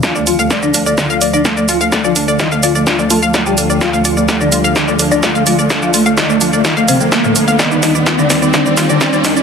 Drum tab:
HH |--o---o---o---o-|--o---o---o---o-|--o---o---o---o-|--o---o---o---o-|
SH |xxxxxxxxxxxxxxxx|xxxxxxxxxxxxxxxx|xxxxxxxxxxxxxxxx|xxxxxxxxxxxxxxxx|
SD |o---o---o---o---|o---o---o---o---|o---o---o---o---|o---o---o---o---|
BD |o---o---o---o---|o---o---o---o---|o---o---o---o---|o---o---o---o---|

HH |--o---o---o---o-|
SH |xxxxxxxxxxxxxxxx|
SD |o-o-o-o-o-o-o-o-|
BD |o---o---o---o---|